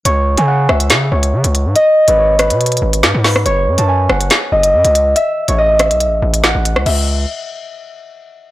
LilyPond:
<<
  \new Staff \with { instrumentName = "Harp" } { \time 4/4 \key cis \minor \tempo 4 = 141 cis''8. gis''16 fis''8 e''4 cis''4. | dis''8. b'16 cis''8 b'2 b'8 | cis''8. a''16 gis''8 fis''4 dis''4. | e''8. cis''16 dis''8 e''4. fis''4 |
e''8 r2. r8 | }
  \new Staff \with { instrumentName = "808-style bass" } { \clef bass \time 4/4 \key cis \minor cis,8. cis8. cis,8 cis8 cis,8 cis16 cis,8 gis,16 | r8. gis,,4 b,8. gis,,8 gis,16 gis,8. | fis,,8 fis,16 fis,8. fis,,8 r8 fis,,8 fis,16 cis,8. | r8. a,,4 b,,16. a,,16. a,,8. a,,8 cis,16 |
cis,4 r2. | }
  \new DrumStaff \with { instrumentName = "Drums" } \drummode { \time 4/4 hh8. hh16 r8 ss16 hh16 <hh sn>8. hh16 r16 hh16 hh8 | hh8. hh16 r8 <hh ss>16 hh16 hh32 hh32 hh32 hh16. hh16 sn8 <hho sn>16 ss16 | hh8. hh16 r8 ss16 hh16 <hh sn>8. hh16 r16 hh16 hh8 | hh8. hh16 r8 <hh ss>16 hh16 hh8. hh16 sn8 hh16 ss16 |
cymc4 r4 r4 r4 | }
>>